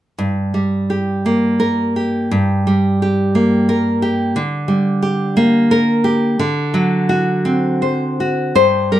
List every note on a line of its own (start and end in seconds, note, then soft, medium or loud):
0.18 2.28 G2 soft
0.54 1.61 G3 soft
0.90 1.95 G4 soft
1.26 2.32 A#3 soft
1.60 2.66 A#4 soft
1.96 3.01 G4 soft
2.31 4.32 G2 soft
2.67 3.69 G3 soft
3.02 4.01 G4 soft
3.35 4.36 A#3 soft
3.69 4.36 A#4 soft
4.02 4.36 G4 soft
4.36 6.35 D3 medium
4.68 5.70 G3 soft
5.02 6.03 G4 soft
5.37 6.39 A#3 medium
5.71 6.39 A#4 medium
6.04 6.39 G4 soft
6.39 8.52 D3 medium
6.74 7.82 F#3 soft
7.09 8.19 F#4 medium
7.45 8.56 C4 soft
7.82 8.54 C5 soft
8.20 8.57 F#4 soft
8.55 9.00 G2 soft
8.55 8.90 C5 medium
8.92 9.00 G3 soft
8.92 9.00 A#4 soft